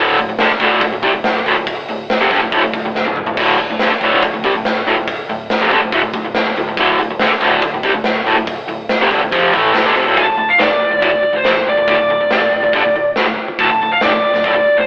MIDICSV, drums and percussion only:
0, 0, Header, 1, 2, 480
1, 0, Start_track
1, 0, Key_signature, -1, "minor"
1, 0, Tempo, 426136
1, 1883, Time_signature, 4, 2, 24, 8
1, 16747, End_track
2, 0, Start_track
2, 0, Title_t, "Drums"
2, 194, Note_on_c, 9, 46, 56
2, 307, Note_off_c, 9, 46, 0
2, 435, Note_on_c, 9, 38, 127
2, 435, Note_on_c, 9, 46, 85
2, 547, Note_off_c, 9, 38, 0
2, 547, Note_off_c, 9, 46, 0
2, 554, Note_on_c, 9, 38, 34
2, 666, Note_off_c, 9, 38, 0
2, 673, Note_on_c, 9, 46, 58
2, 676, Note_on_c, 9, 36, 82
2, 786, Note_off_c, 9, 46, 0
2, 788, Note_off_c, 9, 36, 0
2, 909, Note_on_c, 9, 46, 83
2, 916, Note_on_c, 9, 36, 120
2, 1022, Note_off_c, 9, 46, 0
2, 1028, Note_off_c, 9, 36, 0
2, 1155, Note_on_c, 9, 46, 57
2, 1158, Note_on_c, 9, 36, 79
2, 1268, Note_off_c, 9, 46, 0
2, 1271, Note_off_c, 9, 36, 0
2, 1398, Note_on_c, 9, 38, 102
2, 1398, Note_on_c, 9, 46, 82
2, 1511, Note_off_c, 9, 38, 0
2, 1511, Note_off_c, 9, 46, 0
2, 1640, Note_on_c, 9, 46, 65
2, 1752, Note_off_c, 9, 46, 0
2, 1879, Note_on_c, 9, 46, 89
2, 1880, Note_on_c, 9, 36, 125
2, 1992, Note_off_c, 9, 36, 0
2, 1992, Note_off_c, 9, 46, 0
2, 2122, Note_on_c, 9, 46, 62
2, 2235, Note_off_c, 9, 46, 0
2, 2365, Note_on_c, 9, 38, 125
2, 2365, Note_on_c, 9, 46, 85
2, 2477, Note_off_c, 9, 38, 0
2, 2477, Note_off_c, 9, 46, 0
2, 2601, Note_on_c, 9, 36, 74
2, 2605, Note_on_c, 9, 38, 33
2, 2605, Note_on_c, 9, 46, 59
2, 2714, Note_off_c, 9, 36, 0
2, 2718, Note_off_c, 9, 38, 0
2, 2718, Note_off_c, 9, 46, 0
2, 2841, Note_on_c, 9, 36, 113
2, 2845, Note_on_c, 9, 46, 78
2, 2954, Note_off_c, 9, 36, 0
2, 2958, Note_off_c, 9, 46, 0
2, 3081, Note_on_c, 9, 36, 83
2, 3086, Note_on_c, 9, 46, 60
2, 3194, Note_off_c, 9, 36, 0
2, 3199, Note_off_c, 9, 46, 0
2, 3325, Note_on_c, 9, 38, 56
2, 3436, Note_on_c, 9, 48, 68
2, 3437, Note_off_c, 9, 38, 0
2, 3549, Note_off_c, 9, 48, 0
2, 3556, Note_on_c, 9, 45, 92
2, 3669, Note_off_c, 9, 45, 0
2, 3677, Note_on_c, 9, 43, 81
2, 3790, Note_off_c, 9, 43, 0
2, 3794, Note_on_c, 9, 49, 95
2, 3799, Note_on_c, 9, 36, 125
2, 3906, Note_off_c, 9, 49, 0
2, 3911, Note_off_c, 9, 36, 0
2, 4042, Note_on_c, 9, 46, 54
2, 4154, Note_off_c, 9, 46, 0
2, 4273, Note_on_c, 9, 38, 124
2, 4273, Note_on_c, 9, 46, 81
2, 4386, Note_off_c, 9, 38, 0
2, 4386, Note_off_c, 9, 46, 0
2, 4512, Note_on_c, 9, 46, 55
2, 4518, Note_on_c, 9, 36, 67
2, 4625, Note_off_c, 9, 46, 0
2, 4630, Note_off_c, 9, 36, 0
2, 4760, Note_on_c, 9, 36, 122
2, 4763, Note_on_c, 9, 46, 81
2, 4872, Note_off_c, 9, 36, 0
2, 4876, Note_off_c, 9, 46, 0
2, 5000, Note_on_c, 9, 36, 78
2, 5005, Note_on_c, 9, 46, 59
2, 5112, Note_off_c, 9, 36, 0
2, 5118, Note_off_c, 9, 46, 0
2, 5239, Note_on_c, 9, 38, 97
2, 5239, Note_on_c, 9, 46, 66
2, 5352, Note_off_c, 9, 38, 0
2, 5352, Note_off_c, 9, 46, 0
2, 5480, Note_on_c, 9, 46, 64
2, 5593, Note_off_c, 9, 46, 0
2, 5717, Note_on_c, 9, 36, 113
2, 5720, Note_on_c, 9, 46, 91
2, 5830, Note_off_c, 9, 36, 0
2, 5833, Note_off_c, 9, 46, 0
2, 5962, Note_on_c, 9, 46, 61
2, 6075, Note_off_c, 9, 46, 0
2, 6196, Note_on_c, 9, 38, 125
2, 6196, Note_on_c, 9, 46, 89
2, 6308, Note_off_c, 9, 38, 0
2, 6308, Note_off_c, 9, 46, 0
2, 6319, Note_on_c, 9, 38, 32
2, 6432, Note_off_c, 9, 38, 0
2, 6436, Note_on_c, 9, 36, 73
2, 6438, Note_on_c, 9, 46, 59
2, 6548, Note_off_c, 9, 36, 0
2, 6550, Note_off_c, 9, 46, 0
2, 6672, Note_on_c, 9, 36, 111
2, 6675, Note_on_c, 9, 46, 79
2, 6785, Note_off_c, 9, 36, 0
2, 6787, Note_off_c, 9, 46, 0
2, 6908, Note_on_c, 9, 46, 60
2, 6911, Note_on_c, 9, 36, 95
2, 7020, Note_off_c, 9, 46, 0
2, 7024, Note_off_c, 9, 36, 0
2, 7148, Note_on_c, 9, 38, 100
2, 7148, Note_on_c, 9, 46, 71
2, 7261, Note_off_c, 9, 38, 0
2, 7261, Note_off_c, 9, 46, 0
2, 7389, Note_on_c, 9, 46, 59
2, 7501, Note_off_c, 9, 46, 0
2, 7628, Note_on_c, 9, 46, 83
2, 7629, Note_on_c, 9, 36, 122
2, 7740, Note_off_c, 9, 46, 0
2, 7742, Note_off_c, 9, 36, 0
2, 7867, Note_on_c, 9, 46, 56
2, 7980, Note_off_c, 9, 46, 0
2, 8104, Note_on_c, 9, 38, 118
2, 8104, Note_on_c, 9, 46, 84
2, 8217, Note_off_c, 9, 38, 0
2, 8217, Note_off_c, 9, 46, 0
2, 8224, Note_on_c, 9, 38, 30
2, 8336, Note_off_c, 9, 38, 0
2, 8339, Note_on_c, 9, 38, 31
2, 8339, Note_on_c, 9, 46, 56
2, 8346, Note_on_c, 9, 36, 78
2, 8451, Note_off_c, 9, 38, 0
2, 8451, Note_off_c, 9, 46, 0
2, 8458, Note_off_c, 9, 36, 0
2, 8581, Note_on_c, 9, 46, 81
2, 8585, Note_on_c, 9, 36, 109
2, 8694, Note_off_c, 9, 46, 0
2, 8697, Note_off_c, 9, 36, 0
2, 8821, Note_on_c, 9, 46, 58
2, 8824, Note_on_c, 9, 36, 89
2, 8934, Note_off_c, 9, 46, 0
2, 8936, Note_off_c, 9, 36, 0
2, 9057, Note_on_c, 9, 38, 102
2, 9057, Note_on_c, 9, 46, 69
2, 9169, Note_off_c, 9, 38, 0
2, 9169, Note_off_c, 9, 46, 0
2, 9307, Note_on_c, 9, 46, 62
2, 9420, Note_off_c, 9, 46, 0
2, 9541, Note_on_c, 9, 46, 87
2, 9543, Note_on_c, 9, 36, 112
2, 9653, Note_off_c, 9, 46, 0
2, 9656, Note_off_c, 9, 36, 0
2, 9780, Note_on_c, 9, 46, 60
2, 9892, Note_off_c, 9, 46, 0
2, 10017, Note_on_c, 9, 38, 123
2, 10017, Note_on_c, 9, 46, 88
2, 10130, Note_off_c, 9, 38, 0
2, 10130, Note_off_c, 9, 46, 0
2, 10141, Note_on_c, 9, 38, 32
2, 10253, Note_off_c, 9, 38, 0
2, 10260, Note_on_c, 9, 36, 75
2, 10262, Note_on_c, 9, 46, 65
2, 10373, Note_off_c, 9, 36, 0
2, 10374, Note_off_c, 9, 46, 0
2, 10501, Note_on_c, 9, 36, 106
2, 10501, Note_on_c, 9, 46, 76
2, 10614, Note_off_c, 9, 36, 0
2, 10614, Note_off_c, 9, 46, 0
2, 10737, Note_on_c, 9, 46, 60
2, 10740, Note_on_c, 9, 36, 93
2, 10849, Note_off_c, 9, 46, 0
2, 10853, Note_off_c, 9, 36, 0
2, 10976, Note_on_c, 9, 38, 99
2, 10976, Note_on_c, 9, 46, 71
2, 11088, Note_off_c, 9, 38, 0
2, 11088, Note_off_c, 9, 46, 0
2, 11217, Note_on_c, 9, 46, 58
2, 11329, Note_off_c, 9, 46, 0
2, 11457, Note_on_c, 9, 36, 108
2, 11459, Note_on_c, 9, 46, 52
2, 11570, Note_off_c, 9, 36, 0
2, 11571, Note_off_c, 9, 46, 0
2, 11934, Note_on_c, 9, 38, 113
2, 11934, Note_on_c, 9, 46, 54
2, 12046, Note_off_c, 9, 38, 0
2, 12046, Note_off_c, 9, 46, 0
2, 12417, Note_on_c, 9, 36, 100
2, 12418, Note_on_c, 9, 46, 51
2, 12530, Note_off_c, 9, 36, 0
2, 12531, Note_off_c, 9, 46, 0
2, 12895, Note_on_c, 9, 38, 95
2, 12895, Note_on_c, 9, 46, 48
2, 13008, Note_off_c, 9, 38, 0
2, 13008, Note_off_c, 9, 46, 0
2, 13377, Note_on_c, 9, 46, 61
2, 13379, Note_on_c, 9, 36, 109
2, 13489, Note_off_c, 9, 46, 0
2, 13492, Note_off_c, 9, 36, 0
2, 13862, Note_on_c, 9, 38, 108
2, 13862, Note_on_c, 9, 46, 59
2, 13974, Note_off_c, 9, 38, 0
2, 13974, Note_off_c, 9, 46, 0
2, 14342, Note_on_c, 9, 36, 94
2, 14342, Note_on_c, 9, 46, 56
2, 14455, Note_off_c, 9, 36, 0
2, 14455, Note_off_c, 9, 46, 0
2, 14822, Note_on_c, 9, 38, 99
2, 14822, Note_on_c, 9, 46, 46
2, 14934, Note_off_c, 9, 38, 0
2, 14934, Note_off_c, 9, 46, 0
2, 15306, Note_on_c, 9, 36, 102
2, 15308, Note_on_c, 9, 46, 59
2, 15419, Note_off_c, 9, 36, 0
2, 15421, Note_off_c, 9, 46, 0
2, 15782, Note_on_c, 9, 38, 112
2, 15782, Note_on_c, 9, 46, 59
2, 15895, Note_off_c, 9, 38, 0
2, 15895, Note_off_c, 9, 46, 0
2, 16149, Note_on_c, 9, 38, 30
2, 16262, Note_off_c, 9, 38, 0
2, 16267, Note_on_c, 9, 36, 97
2, 16267, Note_on_c, 9, 46, 52
2, 16379, Note_off_c, 9, 46, 0
2, 16380, Note_off_c, 9, 36, 0
2, 16747, End_track
0, 0, End_of_file